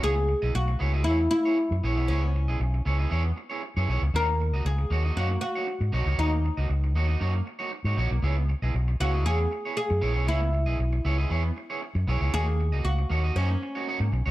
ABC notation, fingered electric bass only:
X:1
M:4/4
L:1/16
Q:1/4=117
K:C#dor
V:1 name="Fingered electric bass" clef=bass
C,,3 B,,, B,,,2 C,,2 E,,2 z3 F,, A,,, B,,, | C,,3 B,,, B,,,2 C,,2 E,,2 z3 F,, B,,, C,, | D,,3 C,, C,,2 D,,2 F,,2 z3 G,, B,,, C,, | D,,3 C,, C,,2 D,,2 F,,2 z3 G,, A,,, B,,, |
C,,3 B,,, B,,,2 C,,2 E,,2 z3 F,, A,,, B,,, | C,,3 B,,, B,,,2 C,,2 E,,2 z3 F,, B,,, C,, | D,,3 C,, C,,2 D,,2 F,,2 z3 G,, B,,, C,, |]